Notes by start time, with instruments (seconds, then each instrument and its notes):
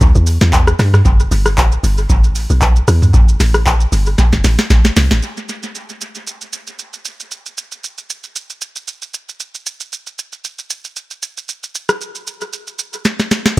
0.01 log drum bass D2, kick, shaker
0.15 log drum bass E2, shaker
0.27 open hi-hat, shaker
0.41 log drum bass E2, snare, shaker
0.53 kick, clap, shaker
0.67 cross-stick, shaker
0.79 log drum bass G2, cross-stick, snare, open hi-hat, shaker
0.94 cross-stick, mid tom, shaker
1.05 log drum bass G1, kick, shaker
1.20 shaker
1.31 log drum bass G1, open hi-hat, shaker
1.46 cross-stick, shaker
1.58 kick, clap, shaker
1.72 shaker
1.83 log drum bass G1, open hi-hat, shaker
1.98 shaker
2.10 log drum bass G1, kick, shaker
2.24 log drum bass A1, shaker
2.35 open hi-hat, shaker
2.50 log drum bass B1, shaker
2.62 kick, clap, shaker
2.76 shaker
2.88 log drum bass E2, cross-stick, open hi-hat, shaker
3.02 mid tom, shaker
3.14 log drum bass A1, kick, shaker
3.29 shaker
3.40 log drum bass A1, snare, open hi-hat, shaker
3.54 cross-stick, shaker
3.66 kick, clap, shaker
3.81 shaker
3.92 log drum bass G1, open hi-hat, shaker
4.06 shaker
4.18 kick, snare, shaker
4.32 log drum bass G1, snare, shaker
4.44 log drum bass A1, snare, open hi-hat, shaker
4.58 snare, shaker
4.70 log drum bass A1, kick, snare, shaker
4.85 snare, shaker
4.96 log drum bass C2, snare, open hi-hat, shaker
5.11 log drum bass A1, snare, shaker
5.23 shaker
5.37 shaker
5.49 shaker
5.63 shaker
5.75 shaker
5.89 shaker
6.01 shaker
6.15 shaker
6.27 shaker
6.41 shaker
6.53 shaker
6.67 shaker
6.79 shaker
6.93 shaker
7.05 shaker
7.20 shaker
7.31 shaker
7.46 shaker
7.58 shaker
7.72 shaker
7.84 shaker
7.98 shaker
8.10 shaker
8.24 shaker
8.36 shaker
8.50 shaker
8.61 shaker
8.76 shaker
8.88 shaker
9.02 shaker
9.14 shaker
9.29 shaker
9.40 shaker
9.55 shaker
9.66 shaker
9.80 shaker
9.93 shaker
10.07 shaker
10.19 shaker
10.32 shaker
10.44 shaker
10.59 shaker
10.70 shaker
10.85 shaker
10.96 shaker
11.11 shaker
11.22 shaker
11.38 shaker
11.49 shaker
11.63 shaker
11.75 shaker
11.89 cross-stick, shaker
12.01 shaker
12.15 shaker
12.27 shaker
12.41 shaker
12.53 shaker
12.67 shaker
12.79 shaker
12.93 shaker
13.05 snare, shaker
13.19 snare, shaker
13.31 snare, shaker
13.46 snare, shaker